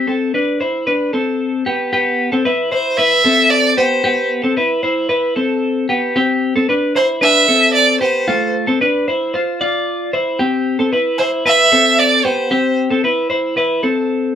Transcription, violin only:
2.73 C5
2.97 E5
3.51 D5
3.77 C5
6.96 C5
7.23 E5
7.74 D5
8.00 C5
11.18 C5
11.47 E5
11.99 D5
12.24 C5

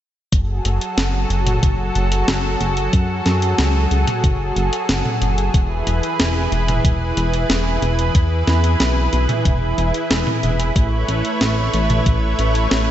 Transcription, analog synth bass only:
0.32 F#1
0.65 F#1
0.98 F#1
1.30 F#1
1.63 F#1
1.96 F#1
2.28 F#1
2.61 F#1
2.93 F#2
3.26 F#2
3.59 C#2
3.91 C#2
4.24 F#1
4.56 F#1
4.89 F#1
5.22 F#1
5.54 E1
5.87 E1
6.20 E1
6.52 E1
6.84 E1
7.17 E1
7.50 E1
7.82 E1
8.15 E2
8.47 E2
8.80 B1
9.13 B1
9.45 E1
9.78 E1
10.11 E1
10.43 E1
10.76 A1
11.08 A1
11.41 A1
11.74 A1
12.06 A1
12.39 A1
12.71 A1

